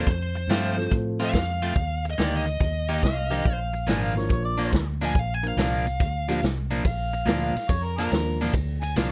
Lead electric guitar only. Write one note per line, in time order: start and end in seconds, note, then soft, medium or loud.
0.12 0.92 C5 medium
1.24 2.04 F5 medium
2.10 2.21 D#5 medium
2.23 2.35 D5 medium
2.37 3.58 D#5 medium
5.05 5.19 G#5 medium
5.19 5.34 F5 medium
5.34 5.46 G#5 medium
5.48 5.60 F5 medium
5.62 6.42 F5 medium